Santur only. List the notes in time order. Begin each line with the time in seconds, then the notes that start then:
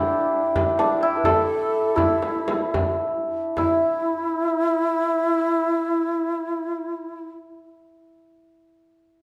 Already playing: D4 E4 G4 A4
0.79 D4
1.03 E4
1.25 A4
1.96 E4
3.58 E4